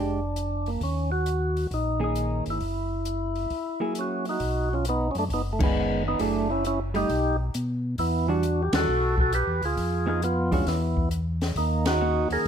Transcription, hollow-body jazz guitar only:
0.00 0.19 G#3 medium
0.00 0.19 D4 medium
0.00 0.20 G4 medium
2.00 2.57 D#3 medium
2.00 2.57 A#3 soft
2.00 2.57 C#4 medium
2.00 2.58 G#4 medium
3.80 4.37 F#3 medium
3.80 4.37 A#3 medium
3.80 4.37 E4 soft
3.80 4.38 G#4 medium
5.59 6.16 D#3 medium
5.59 6.17 C#4 medium
6.19 6.46 F#3 medium
6.19 6.47 A3 medium
6.19 6.47 E4 medium
6.19 6.47 G#4 medium
6.94 7.07 G3 medium
6.94 7.07 A3 medium
6.94 7.08 D#4 medium
8.28 8.41 E3 medium
8.28 8.42 G3 medium
8.28 8.42 D4 medium
8.28 8.42 F#4 medium
8.73 8.86 E3 medium
8.73 8.86 G3 medium
8.73 8.87 D4 medium
8.73 8.87 F#4 medium
10.06 10.20 F3 medium
10.06 10.20 B3 medium
10.06 10.21 D#4 medium
10.06 10.21 G#4 medium
10.52 10.65 E3 medium
10.52 10.65 G#3 medium
10.52 10.66 D4 medium
10.52 10.66 F#4 medium
12.01 12.48 D#3 medium
12.01 12.48 A#3 medium
12.01 12.48 C#4 medium
12.01 12.48 F#4 medium

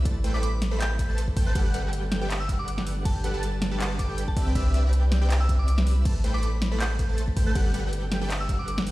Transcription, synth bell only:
0.34 0.40 D6 medium
0.43 0.49 D6 medium
0.80 1.09 G6 medium
1.47 1.59 G6 medium
2.40 2.46 E6 medium
2.49 2.55 E6 medium
2.59 2.65 D6 loud
2.68 2.74 D6 medium
3.05 3.19 A5 medium
3.99 4.13 D6 medium
4.28 4.41 A5 loud
5.40 5.46 E6 medium
5.49 5.56 E6 medium
5.59 5.65 D6 loud
5.68 5.74 D6 medium
6.34 6.40 D6 medium
6.43 6.49 D6 medium
6.80 7.09 G6 medium
7.47 7.59 G6 medium
8.40 8.46 E6 medium
8.49 8.56 E6 medium
8.59 8.65 D6 loud
8.68 8.74 D6 medium

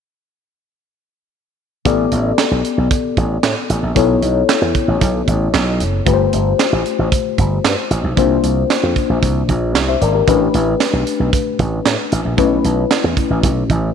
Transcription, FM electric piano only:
1.85 3.92 B3 medium
1.85 3.92 G4 medium
1.85 3.92 A4 medium
1.85 3.93 D5 medium
3.95 6.02 B3 medium
3.95 6.02 E4 medium
3.95 6.03 A4 medium
3.95 6.03 C#5 medium
6.06 8.13 A3 medium
6.06 8.13 F4 medium
6.06 8.13 G4 medium
6.06 6.13 B4 medium
6.14 8.17 C5 medium
8.17 10.23 A#3 medium
8.17 10.24 D4 medium
8.17 10.24 F4 medium
8.17 9.72 C5 medium
9.88 10.01 C5 medium
9.88 10.01 E5 medium
10.02 10.13 A#4 medium
10.02 10.14 D5 medium
10.15 10.27 G4 soft
10.15 10.40 A#4 medium
10.27 12.34 A3 medium
10.27 12.34 D4 medium
10.27 12.34 G4 medium
10.27 12.35 B4 medium
12.37 13.94 A3 medium
12.37 13.94 C#4 medium
12.37 13.94 E4 medium
12.37 13.93 B4 medium

